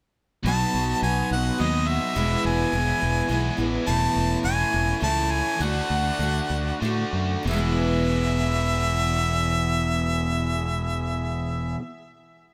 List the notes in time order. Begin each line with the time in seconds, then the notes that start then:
0.44 B1 B2 F#3 B3 D#4 F#4 D#5 A5 B5
0.74 B1
1.02 B1 F#3 B3 D#4 F#4 G#5
1.31 B1 B3 D#4 F#4 F#5
1.58 D#2 B2 F#3 B3 D#4 F#4 D#5
1.88 E5
2.16 E1 E2 B2 E3 G#3 B3 E4 G#4 E5
2.45 E1 G#5
2.72 E1 E3 G#3 B3 E4
3.03 E1
3.28 B1 E2 B2 E3 G#3 B3
3.32 E4
3.57 A1 E3 G#3 B3 E4
3.87 E1 E2 B2 E3 A3 C#4 E4 A4 C#5 A5
4.16 E1
4.43 E1 E3 A3 C#4 E4 G#5
4.71 E1 E3 A3 C#4 E4
5.00 C#2 E3 A3 C#4 E4 A5
5.32 G#5
5.60 D2 D3 A3 D4 F#4 D5 F#5 A5
5.90 D2
6.19 D2 D3 A3 D4 F#4
6.50 D2
6.82 A2 D3 A3 D4 F#4
7.13 F#2
7.43 E1 E2 E3 G#3
7.47 B2 E3 B3 E4 G#4 E5
7.53 G#3 B3
7.58 E4